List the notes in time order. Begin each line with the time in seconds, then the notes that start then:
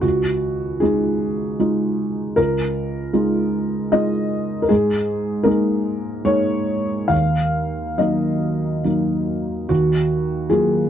0.01 C#2 F#4
0.80 G#3 D#4 F4 G#4
1.59 G#3 D#4 F4
2.36 C#2 A#4
3.13 G#3 D#4 F4
3.92 G#3 D#4 F4 D#5
4.62 A#4
4.69 G#2 G#4
5.43 G#3 A#3 D#4 A#4
6.25 G#3 A#3 D#4 C#5
7.08 D#2 F5
7.98 F#3 A#3 D#4 D#5
8.84 F#3 A#3 D#4
9.69 D#2 F#4
10.49 F#3 A#3 F4 G#4